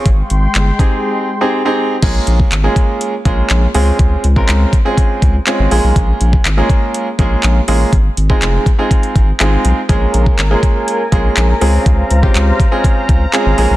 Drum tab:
CC |----------------|x---------------|----------------|----------------|
HH |x-x-x-x---------|x-x-x-x-x-x-x-o-|x-x-x-x-x-x-x-o-|x-x-x-x-x-x-x-o-|
CP |----x-----------|----x-------x---|----x-------x---|----x-------x---|
BD |o-----o---------|o--o--o---o-----|o--o--o-o-o-----|o--o--o---o-----|

CC |----------------|----------------|----------------|
HH |x-x-x-x-xxx-x-x-|x-x-x-x-x-x-x-o-|x-x-x-x-x-x-x-o-|
CP |----x-------x---|----x-------x---|----x-------x---|
BD |o--o--o-o-o-----|o--o--o---o-----|o--o--o-o-o-----|